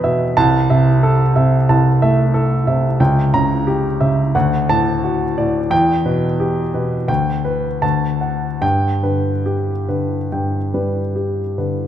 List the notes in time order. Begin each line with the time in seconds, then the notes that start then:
Already playing: E2 B2 B4 G5 B5
0.04 B2 E5
0.37 C2 A5
0.70 C3 E5
1.03 A4
1.36 C3 E5
1.69 C2 A5
2.02 A3 E5
2.34 A4
2.67 C3 E5
3.00 C#2 G5
3.34 C#3 A#5
3.67 G4
4.01 C#3 E5
4.35 D2 F#5
4.69 A2 A5
5.04 F#4
5.38 A2 D5
5.71 E2 G5
6.06 B2 B4
6.40 G4
6.74 B2 B4
7.08 D2 G5
7.45 B4
7.82 D2 A5
8.21 F#5
8.62 G2 G5
9.03 D3 B4
9.46 G4
9.88 D3 B4
10.32 G2 G5
10.74 G3 B4
11.16 G4
11.58 D3 B4